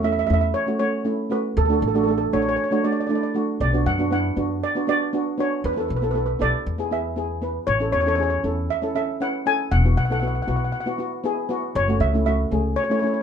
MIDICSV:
0, 0, Header, 1, 4, 480
1, 0, Start_track
1, 0, Key_signature, 3, "major"
1, 0, Tempo, 509338
1, 1479, Time_signature, 4, 2, 24, 8
1, 12464, End_track
2, 0, Start_track
2, 0, Title_t, "Steel pan"
2, 0, Program_c, 0, 114
2, 42, Note_on_c, 0, 76, 75
2, 105, Note_off_c, 0, 76, 0
2, 116, Note_on_c, 0, 76, 57
2, 169, Note_off_c, 0, 76, 0
2, 180, Note_on_c, 0, 76, 71
2, 240, Note_off_c, 0, 76, 0
2, 252, Note_on_c, 0, 76, 69
2, 305, Note_off_c, 0, 76, 0
2, 317, Note_on_c, 0, 76, 75
2, 375, Note_off_c, 0, 76, 0
2, 386, Note_on_c, 0, 76, 62
2, 462, Note_off_c, 0, 76, 0
2, 509, Note_on_c, 0, 73, 80
2, 737, Note_off_c, 0, 73, 0
2, 749, Note_on_c, 0, 73, 78
2, 1242, Note_on_c, 0, 71, 70
2, 1248, Note_off_c, 0, 73, 0
2, 1485, Note_on_c, 0, 69, 68
2, 1488, Note_off_c, 0, 71, 0
2, 1546, Note_off_c, 0, 69, 0
2, 1558, Note_on_c, 0, 69, 55
2, 1618, Note_off_c, 0, 69, 0
2, 1629, Note_on_c, 0, 69, 52
2, 1685, Note_off_c, 0, 69, 0
2, 1696, Note_on_c, 0, 69, 44
2, 1758, Note_off_c, 0, 69, 0
2, 1769, Note_on_c, 0, 69, 56
2, 1833, Note_off_c, 0, 69, 0
2, 1844, Note_on_c, 0, 69, 48
2, 1908, Note_off_c, 0, 69, 0
2, 1919, Note_on_c, 0, 69, 54
2, 1975, Note_off_c, 0, 69, 0
2, 1986, Note_on_c, 0, 69, 47
2, 2041, Note_off_c, 0, 69, 0
2, 2053, Note_on_c, 0, 69, 57
2, 2123, Note_off_c, 0, 69, 0
2, 2200, Note_on_c, 0, 73, 74
2, 2271, Note_off_c, 0, 73, 0
2, 2282, Note_on_c, 0, 73, 58
2, 2332, Note_off_c, 0, 73, 0
2, 2343, Note_on_c, 0, 73, 73
2, 2404, Note_off_c, 0, 73, 0
2, 2416, Note_on_c, 0, 73, 59
2, 2476, Note_off_c, 0, 73, 0
2, 2487, Note_on_c, 0, 73, 59
2, 2553, Note_off_c, 0, 73, 0
2, 2565, Note_on_c, 0, 73, 58
2, 2632, Note_off_c, 0, 73, 0
2, 2680, Note_on_c, 0, 74, 68
2, 2744, Note_off_c, 0, 74, 0
2, 2755, Note_on_c, 0, 74, 52
2, 2821, Note_off_c, 0, 74, 0
2, 2831, Note_on_c, 0, 74, 57
2, 2879, Note_off_c, 0, 74, 0
2, 2891, Note_on_c, 0, 74, 51
2, 2958, Note_off_c, 0, 74, 0
2, 2971, Note_on_c, 0, 74, 54
2, 3036, Note_off_c, 0, 74, 0
2, 3046, Note_on_c, 0, 74, 54
2, 3106, Note_off_c, 0, 74, 0
2, 3404, Note_on_c, 0, 74, 86
2, 3642, Note_on_c, 0, 78, 85
2, 3648, Note_off_c, 0, 74, 0
2, 3864, Note_off_c, 0, 78, 0
2, 3888, Note_on_c, 0, 78, 79
2, 4368, Note_on_c, 0, 74, 84
2, 4378, Note_off_c, 0, 78, 0
2, 4596, Note_off_c, 0, 74, 0
2, 4607, Note_on_c, 0, 74, 88
2, 5050, Note_off_c, 0, 74, 0
2, 5093, Note_on_c, 0, 73, 77
2, 5329, Note_on_c, 0, 71, 78
2, 5333, Note_off_c, 0, 73, 0
2, 5389, Note_off_c, 0, 71, 0
2, 5400, Note_on_c, 0, 71, 52
2, 5458, Note_off_c, 0, 71, 0
2, 5470, Note_on_c, 0, 71, 52
2, 5530, Note_off_c, 0, 71, 0
2, 5545, Note_on_c, 0, 71, 46
2, 5605, Note_off_c, 0, 71, 0
2, 5622, Note_on_c, 0, 71, 54
2, 5682, Note_off_c, 0, 71, 0
2, 5693, Note_on_c, 0, 71, 44
2, 5745, Note_off_c, 0, 71, 0
2, 5757, Note_on_c, 0, 71, 59
2, 5811, Note_off_c, 0, 71, 0
2, 5822, Note_on_c, 0, 71, 46
2, 5887, Note_off_c, 0, 71, 0
2, 5899, Note_on_c, 0, 71, 53
2, 5960, Note_off_c, 0, 71, 0
2, 6048, Note_on_c, 0, 74, 81
2, 6526, Note_on_c, 0, 76, 72
2, 6537, Note_off_c, 0, 74, 0
2, 6969, Note_off_c, 0, 76, 0
2, 7226, Note_on_c, 0, 73, 95
2, 7337, Note_off_c, 0, 73, 0
2, 7468, Note_on_c, 0, 73, 85
2, 7536, Note_off_c, 0, 73, 0
2, 7547, Note_on_c, 0, 73, 65
2, 7606, Note_off_c, 0, 73, 0
2, 7617, Note_on_c, 0, 73, 74
2, 7673, Note_off_c, 0, 73, 0
2, 7685, Note_on_c, 0, 73, 63
2, 7742, Note_off_c, 0, 73, 0
2, 7754, Note_on_c, 0, 73, 67
2, 7810, Note_off_c, 0, 73, 0
2, 7822, Note_on_c, 0, 73, 59
2, 7892, Note_off_c, 0, 73, 0
2, 8203, Note_on_c, 0, 76, 81
2, 8428, Note_off_c, 0, 76, 0
2, 8440, Note_on_c, 0, 76, 72
2, 8662, Note_off_c, 0, 76, 0
2, 8686, Note_on_c, 0, 78, 78
2, 8922, Note_on_c, 0, 80, 91
2, 8929, Note_off_c, 0, 78, 0
2, 9155, Note_on_c, 0, 78, 83
2, 9167, Note_off_c, 0, 80, 0
2, 9388, Note_off_c, 0, 78, 0
2, 9399, Note_on_c, 0, 78, 75
2, 9462, Note_off_c, 0, 78, 0
2, 9473, Note_on_c, 0, 78, 54
2, 9528, Note_off_c, 0, 78, 0
2, 9539, Note_on_c, 0, 78, 67
2, 9601, Note_off_c, 0, 78, 0
2, 9612, Note_on_c, 0, 78, 54
2, 9673, Note_off_c, 0, 78, 0
2, 9684, Note_on_c, 0, 78, 50
2, 9745, Note_off_c, 0, 78, 0
2, 9756, Note_on_c, 0, 78, 42
2, 9811, Note_off_c, 0, 78, 0
2, 9823, Note_on_c, 0, 78, 54
2, 9885, Note_off_c, 0, 78, 0
2, 9897, Note_on_c, 0, 78, 47
2, 9943, Note_off_c, 0, 78, 0
2, 9955, Note_on_c, 0, 78, 50
2, 10021, Note_off_c, 0, 78, 0
2, 10032, Note_on_c, 0, 78, 49
2, 10094, Note_off_c, 0, 78, 0
2, 10106, Note_on_c, 0, 78, 57
2, 10172, Note_off_c, 0, 78, 0
2, 10183, Note_on_c, 0, 78, 54
2, 10249, Note_off_c, 0, 78, 0
2, 11085, Note_on_c, 0, 73, 92
2, 11316, Note_on_c, 0, 76, 82
2, 11328, Note_off_c, 0, 73, 0
2, 11543, Note_off_c, 0, 76, 0
2, 11554, Note_on_c, 0, 76, 79
2, 12028, Note_on_c, 0, 73, 79
2, 12051, Note_off_c, 0, 76, 0
2, 12088, Note_off_c, 0, 73, 0
2, 12099, Note_on_c, 0, 73, 55
2, 12159, Note_off_c, 0, 73, 0
2, 12170, Note_on_c, 0, 73, 64
2, 12234, Note_off_c, 0, 73, 0
2, 12245, Note_on_c, 0, 73, 53
2, 12306, Note_off_c, 0, 73, 0
2, 12317, Note_on_c, 0, 73, 54
2, 12370, Note_off_c, 0, 73, 0
2, 12381, Note_on_c, 0, 73, 51
2, 12438, Note_off_c, 0, 73, 0
2, 12464, End_track
3, 0, Start_track
3, 0, Title_t, "Steel pan"
3, 0, Program_c, 1, 114
3, 29, Note_on_c, 1, 57, 61
3, 34, Note_on_c, 1, 61, 56
3, 43, Note_on_c, 1, 64, 64
3, 181, Note_off_c, 1, 57, 0
3, 184, Note_off_c, 1, 61, 0
3, 188, Note_off_c, 1, 64, 0
3, 265, Note_on_c, 1, 57, 60
3, 272, Note_on_c, 1, 61, 52
3, 280, Note_on_c, 1, 64, 75
3, 489, Note_off_c, 1, 57, 0
3, 492, Note_off_c, 1, 61, 0
3, 496, Note_off_c, 1, 64, 0
3, 628, Note_on_c, 1, 57, 61
3, 636, Note_on_c, 1, 61, 56
3, 641, Note_on_c, 1, 66, 68
3, 705, Note_off_c, 1, 57, 0
3, 709, Note_off_c, 1, 61, 0
3, 711, Note_off_c, 1, 66, 0
3, 743, Note_on_c, 1, 57, 57
3, 751, Note_on_c, 1, 61, 59
3, 755, Note_on_c, 1, 66, 62
3, 899, Note_off_c, 1, 57, 0
3, 903, Note_off_c, 1, 61, 0
3, 905, Note_off_c, 1, 66, 0
3, 985, Note_on_c, 1, 57, 63
3, 988, Note_on_c, 1, 61, 59
3, 995, Note_on_c, 1, 64, 71
3, 1139, Note_off_c, 1, 57, 0
3, 1141, Note_off_c, 1, 61, 0
3, 1145, Note_off_c, 1, 64, 0
3, 1222, Note_on_c, 1, 57, 57
3, 1229, Note_on_c, 1, 61, 55
3, 1233, Note_on_c, 1, 66, 67
3, 1448, Note_off_c, 1, 57, 0
3, 1451, Note_off_c, 1, 61, 0
3, 1453, Note_off_c, 1, 66, 0
3, 1593, Note_on_c, 1, 57, 60
3, 1597, Note_on_c, 1, 62, 58
3, 1604, Note_on_c, 1, 66, 64
3, 1738, Note_off_c, 1, 57, 0
3, 1741, Note_off_c, 1, 62, 0
3, 1744, Note_off_c, 1, 66, 0
3, 1831, Note_on_c, 1, 57, 64
3, 1838, Note_on_c, 1, 62, 62
3, 1845, Note_on_c, 1, 66, 71
3, 1906, Note_off_c, 1, 57, 0
3, 1910, Note_off_c, 1, 62, 0
3, 1914, Note_off_c, 1, 66, 0
3, 1950, Note_on_c, 1, 57, 59
3, 1955, Note_on_c, 1, 62, 54
3, 1963, Note_on_c, 1, 69, 65
3, 2102, Note_off_c, 1, 57, 0
3, 2105, Note_off_c, 1, 62, 0
3, 2109, Note_off_c, 1, 69, 0
3, 2191, Note_on_c, 1, 57, 66
3, 2194, Note_on_c, 1, 62, 58
3, 2202, Note_on_c, 1, 66, 68
3, 2412, Note_off_c, 1, 57, 0
3, 2413, Note_off_c, 1, 62, 0
3, 2418, Note_off_c, 1, 66, 0
3, 2553, Note_on_c, 1, 57, 67
3, 2560, Note_on_c, 1, 62, 64
3, 2568, Note_on_c, 1, 66, 75
3, 2628, Note_off_c, 1, 57, 0
3, 2631, Note_off_c, 1, 62, 0
3, 2635, Note_off_c, 1, 66, 0
3, 2676, Note_on_c, 1, 57, 58
3, 2680, Note_on_c, 1, 62, 55
3, 2686, Note_on_c, 1, 66, 60
3, 2825, Note_off_c, 1, 57, 0
3, 2827, Note_off_c, 1, 62, 0
3, 2830, Note_off_c, 1, 66, 0
3, 2911, Note_on_c, 1, 57, 63
3, 2918, Note_on_c, 1, 62, 60
3, 2924, Note_on_c, 1, 64, 69
3, 3063, Note_off_c, 1, 57, 0
3, 3066, Note_off_c, 1, 62, 0
3, 3069, Note_off_c, 1, 64, 0
3, 3150, Note_on_c, 1, 57, 60
3, 3156, Note_on_c, 1, 62, 56
3, 3164, Note_on_c, 1, 66, 69
3, 3372, Note_off_c, 1, 57, 0
3, 3374, Note_off_c, 1, 62, 0
3, 3378, Note_off_c, 1, 66, 0
3, 3516, Note_on_c, 1, 59, 68
3, 3524, Note_on_c, 1, 62, 58
3, 3530, Note_on_c, 1, 66, 73
3, 3660, Note_off_c, 1, 59, 0
3, 3664, Note_off_c, 1, 62, 0
3, 3667, Note_off_c, 1, 66, 0
3, 3755, Note_on_c, 1, 59, 66
3, 3762, Note_on_c, 1, 62, 61
3, 3771, Note_on_c, 1, 66, 72
3, 3829, Note_off_c, 1, 59, 0
3, 3832, Note_off_c, 1, 62, 0
3, 3836, Note_off_c, 1, 66, 0
3, 3872, Note_on_c, 1, 59, 60
3, 3880, Note_on_c, 1, 62, 55
3, 3886, Note_on_c, 1, 64, 71
3, 4023, Note_off_c, 1, 59, 0
3, 4027, Note_off_c, 1, 62, 0
3, 4030, Note_off_c, 1, 64, 0
3, 4112, Note_on_c, 1, 59, 64
3, 4118, Note_on_c, 1, 62, 63
3, 4125, Note_on_c, 1, 66, 71
3, 4332, Note_off_c, 1, 59, 0
3, 4335, Note_off_c, 1, 62, 0
3, 4339, Note_off_c, 1, 66, 0
3, 4477, Note_on_c, 1, 59, 70
3, 4484, Note_on_c, 1, 62, 57
3, 4491, Note_on_c, 1, 66, 67
3, 4550, Note_off_c, 1, 59, 0
3, 4553, Note_off_c, 1, 62, 0
3, 4557, Note_off_c, 1, 66, 0
3, 4591, Note_on_c, 1, 59, 61
3, 4597, Note_on_c, 1, 62, 60
3, 4605, Note_on_c, 1, 66, 71
3, 4743, Note_off_c, 1, 59, 0
3, 4746, Note_off_c, 1, 62, 0
3, 4750, Note_off_c, 1, 66, 0
3, 4833, Note_on_c, 1, 59, 68
3, 4838, Note_on_c, 1, 62, 64
3, 4848, Note_on_c, 1, 66, 74
3, 4984, Note_off_c, 1, 59, 0
3, 4986, Note_off_c, 1, 62, 0
3, 4991, Note_off_c, 1, 66, 0
3, 5067, Note_on_c, 1, 59, 63
3, 5075, Note_on_c, 1, 62, 58
3, 5082, Note_on_c, 1, 66, 64
3, 5290, Note_off_c, 1, 59, 0
3, 5294, Note_off_c, 1, 62, 0
3, 5297, Note_off_c, 1, 66, 0
3, 5431, Note_on_c, 1, 59, 57
3, 5438, Note_on_c, 1, 64, 56
3, 5444, Note_on_c, 1, 69, 70
3, 5578, Note_off_c, 1, 59, 0
3, 5581, Note_off_c, 1, 64, 0
3, 5584, Note_off_c, 1, 69, 0
3, 5671, Note_on_c, 1, 59, 65
3, 5679, Note_on_c, 1, 64, 53
3, 5686, Note_on_c, 1, 69, 70
3, 5747, Note_off_c, 1, 59, 0
3, 5750, Note_off_c, 1, 64, 0
3, 5754, Note_off_c, 1, 69, 0
3, 5785, Note_on_c, 1, 59, 57
3, 5794, Note_on_c, 1, 64, 54
3, 5799, Note_on_c, 1, 69, 66
3, 5940, Note_off_c, 1, 59, 0
3, 5944, Note_off_c, 1, 64, 0
3, 5946, Note_off_c, 1, 69, 0
3, 6024, Note_on_c, 1, 59, 65
3, 6029, Note_on_c, 1, 64, 62
3, 6038, Note_on_c, 1, 69, 71
3, 6248, Note_off_c, 1, 59, 0
3, 6251, Note_off_c, 1, 64, 0
3, 6255, Note_off_c, 1, 69, 0
3, 6392, Note_on_c, 1, 59, 63
3, 6400, Note_on_c, 1, 64, 60
3, 6407, Note_on_c, 1, 68, 72
3, 6467, Note_off_c, 1, 59, 0
3, 6471, Note_off_c, 1, 64, 0
3, 6474, Note_off_c, 1, 68, 0
3, 6510, Note_on_c, 1, 59, 54
3, 6516, Note_on_c, 1, 64, 58
3, 6521, Note_on_c, 1, 68, 60
3, 6662, Note_off_c, 1, 59, 0
3, 6665, Note_off_c, 1, 64, 0
3, 6668, Note_off_c, 1, 68, 0
3, 6748, Note_on_c, 1, 59, 60
3, 6757, Note_on_c, 1, 64, 54
3, 6764, Note_on_c, 1, 68, 69
3, 6901, Note_off_c, 1, 59, 0
3, 6906, Note_off_c, 1, 64, 0
3, 6909, Note_off_c, 1, 68, 0
3, 6989, Note_on_c, 1, 59, 65
3, 6995, Note_on_c, 1, 64, 55
3, 7001, Note_on_c, 1, 71, 68
3, 7211, Note_off_c, 1, 59, 0
3, 7214, Note_off_c, 1, 64, 0
3, 7217, Note_off_c, 1, 71, 0
3, 7350, Note_on_c, 1, 61, 63
3, 7357, Note_on_c, 1, 64, 61
3, 7365, Note_on_c, 1, 69, 66
3, 7497, Note_off_c, 1, 61, 0
3, 7500, Note_off_c, 1, 64, 0
3, 7504, Note_off_c, 1, 69, 0
3, 7596, Note_on_c, 1, 61, 64
3, 7600, Note_on_c, 1, 64, 59
3, 7608, Note_on_c, 1, 69, 72
3, 7669, Note_off_c, 1, 61, 0
3, 7671, Note_off_c, 1, 64, 0
3, 7675, Note_off_c, 1, 69, 0
3, 7712, Note_on_c, 1, 61, 58
3, 7718, Note_on_c, 1, 64, 54
3, 7724, Note_on_c, 1, 68, 66
3, 7863, Note_off_c, 1, 61, 0
3, 7866, Note_off_c, 1, 64, 0
3, 7869, Note_off_c, 1, 68, 0
3, 7951, Note_on_c, 1, 61, 64
3, 7956, Note_on_c, 1, 64, 59
3, 7963, Note_on_c, 1, 69, 69
3, 8172, Note_off_c, 1, 61, 0
3, 8174, Note_off_c, 1, 64, 0
3, 8177, Note_off_c, 1, 69, 0
3, 8312, Note_on_c, 1, 61, 66
3, 8322, Note_on_c, 1, 64, 65
3, 8325, Note_on_c, 1, 69, 75
3, 8387, Note_off_c, 1, 61, 0
3, 8392, Note_off_c, 1, 64, 0
3, 8393, Note_off_c, 1, 69, 0
3, 8436, Note_on_c, 1, 61, 62
3, 8441, Note_on_c, 1, 64, 53
3, 8449, Note_on_c, 1, 69, 67
3, 8585, Note_off_c, 1, 61, 0
3, 8588, Note_off_c, 1, 64, 0
3, 8591, Note_off_c, 1, 69, 0
3, 8674, Note_on_c, 1, 61, 65
3, 8684, Note_on_c, 1, 64, 60
3, 8690, Note_on_c, 1, 71, 69
3, 8824, Note_off_c, 1, 61, 0
3, 8829, Note_off_c, 1, 64, 0
3, 8832, Note_off_c, 1, 71, 0
3, 8913, Note_on_c, 1, 61, 59
3, 8920, Note_on_c, 1, 64, 61
3, 8929, Note_on_c, 1, 69, 68
3, 9133, Note_off_c, 1, 61, 0
3, 9136, Note_off_c, 1, 64, 0
3, 9140, Note_off_c, 1, 69, 0
3, 9279, Note_on_c, 1, 59, 62
3, 9285, Note_on_c, 1, 64, 56
3, 9291, Note_on_c, 1, 66, 68
3, 9421, Note_off_c, 1, 59, 0
3, 9424, Note_off_c, 1, 64, 0
3, 9427, Note_off_c, 1, 66, 0
3, 9519, Note_on_c, 1, 59, 63
3, 9525, Note_on_c, 1, 64, 61
3, 9532, Note_on_c, 1, 69, 67
3, 9590, Note_off_c, 1, 59, 0
3, 9593, Note_off_c, 1, 64, 0
3, 9597, Note_off_c, 1, 69, 0
3, 9630, Note_on_c, 1, 59, 65
3, 9637, Note_on_c, 1, 64, 57
3, 9643, Note_on_c, 1, 66, 66
3, 9782, Note_off_c, 1, 59, 0
3, 9785, Note_off_c, 1, 64, 0
3, 9788, Note_off_c, 1, 66, 0
3, 9869, Note_on_c, 1, 59, 64
3, 9876, Note_on_c, 1, 64, 61
3, 9880, Note_on_c, 1, 66, 70
3, 10091, Note_off_c, 1, 59, 0
3, 10094, Note_off_c, 1, 64, 0
3, 10096, Note_off_c, 1, 66, 0
3, 10234, Note_on_c, 1, 59, 67
3, 10238, Note_on_c, 1, 64, 58
3, 10245, Note_on_c, 1, 66, 75
3, 10307, Note_off_c, 1, 59, 0
3, 10310, Note_off_c, 1, 64, 0
3, 10313, Note_off_c, 1, 66, 0
3, 10350, Note_on_c, 1, 59, 59
3, 10355, Note_on_c, 1, 64, 54
3, 10364, Note_on_c, 1, 66, 75
3, 10502, Note_off_c, 1, 59, 0
3, 10504, Note_off_c, 1, 64, 0
3, 10509, Note_off_c, 1, 66, 0
3, 10589, Note_on_c, 1, 59, 79
3, 10600, Note_on_c, 1, 64, 70
3, 10606, Note_on_c, 1, 68, 85
3, 10741, Note_off_c, 1, 59, 0
3, 10747, Note_off_c, 1, 64, 0
3, 10750, Note_off_c, 1, 68, 0
3, 10827, Note_on_c, 1, 59, 75
3, 10838, Note_on_c, 1, 64, 67
3, 10843, Note_on_c, 1, 66, 86
3, 11050, Note_off_c, 1, 59, 0
3, 11055, Note_off_c, 1, 64, 0
3, 11057, Note_off_c, 1, 66, 0
3, 11196, Note_on_c, 1, 57, 67
3, 11202, Note_on_c, 1, 61, 58
3, 11211, Note_on_c, 1, 66, 72
3, 11340, Note_off_c, 1, 57, 0
3, 11343, Note_off_c, 1, 61, 0
3, 11347, Note_off_c, 1, 66, 0
3, 11436, Note_on_c, 1, 57, 63
3, 11447, Note_on_c, 1, 61, 61
3, 11452, Note_on_c, 1, 64, 75
3, 11508, Note_off_c, 1, 57, 0
3, 11514, Note_off_c, 1, 61, 0
3, 11516, Note_off_c, 1, 64, 0
3, 11549, Note_on_c, 1, 57, 65
3, 11558, Note_on_c, 1, 61, 52
3, 11565, Note_on_c, 1, 66, 64
3, 11701, Note_off_c, 1, 57, 0
3, 11706, Note_off_c, 1, 61, 0
3, 11709, Note_off_c, 1, 66, 0
3, 11792, Note_on_c, 1, 57, 67
3, 11800, Note_on_c, 1, 61, 60
3, 11806, Note_on_c, 1, 68, 72
3, 12012, Note_off_c, 1, 57, 0
3, 12016, Note_off_c, 1, 61, 0
3, 12019, Note_off_c, 1, 68, 0
3, 12154, Note_on_c, 1, 57, 69
3, 12159, Note_on_c, 1, 61, 59
3, 12167, Note_on_c, 1, 64, 75
3, 12227, Note_off_c, 1, 57, 0
3, 12230, Note_off_c, 1, 61, 0
3, 12234, Note_off_c, 1, 64, 0
3, 12269, Note_on_c, 1, 57, 58
3, 12279, Note_on_c, 1, 61, 56
3, 12286, Note_on_c, 1, 64, 65
3, 12421, Note_off_c, 1, 57, 0
3, 12426, Note_off_c, 1, 61, 0
3, 12430, Note_off_c, 1, 64, 0
3, 12464, End_track
4, 0, Start_track
4, 0, Title_t, "Upright bass"
4, 0, Program_c, 2, 32
4, 0, Note_on_c, 2, 40, 76
4, 227, Note_off_c, 2, 40, 0
4, 282, Note_on_c, 2, 40, 77
4, 494, Note_off_c, 2, 40, 0
4, 1477, Note_on_c, 2, 38, 96
4, 1692, Note_off_c, 2, 38, 0
4, 1717, Note_on_c, 2, 33, 81
4, 2146, Note_off_c, 2, 33, 0
4, 2199, Note_on_c, 2, 33, 71
4, 2413, Note_off_c, 2, 33, 0
4, 3397, Note_on_c, 2, 35, 91
4, 3612, Note_off_c, 2, 35, 0
4, 3639, Note_on_c, 2, 42, 79
4, 4067, Note_off_c, 2, 42, 0
4, 4116, Note_on_c, 2, 42, 73
4, 4332, Note_off_c, 2, 42, 0
4, 5317, Note_on_c, 2, 40, 92
4, 5532, Note_off_c, 2, 40, 0
4, 5563, Note_on_c, 2, 35, 76
4, 5989, Note_off_c, 2, 35, 0
4, 6041, Note_on_c, 2, 35, 72
4, 6151, Note_off_c, 2, 35, 0
4, 6281, Note_on_c, 2, 40, 86
4, 7135, Note_off_c, 2, 40, 0
4, 7233, Note_on_c, 2, 33, 90
4, 7449, Note_off_c, 2, 33, 0
4, 7474, Note_on_c, 2, 40, 77
4, 7904, Note_off_c, 2, 40, 0
4, 7954, Note_on_c, 2, 40, 73
4, 8170, Note_off_c, 2, 40, 0
4, 9156, Note_on_c, 2, 28, 96
4, 9371, Note_off_c, 2, 28, 0
4, 9399, Note_on_c, 2, 35, 82
4, 9826, Note_off_c, 2, 35, 0
4, 9872, Note_on_c, 2, 35, 70
4, 10089, Note_off_c, 2, 35, 0
4, 11076, Note_on_c, 2, 30, 97
4, 11291, Note_off_c, 2, 30, 0
4, 11310, Note_on_c, 2, 37, 83
4, 11741, Note_off_c, 2, 37, 0
4, 11796, Note_on_c, 2, 37, 80
4, 12011, Note_off_c, 2, 37, 0
4, 12464, End_track
0, 0, End_of_file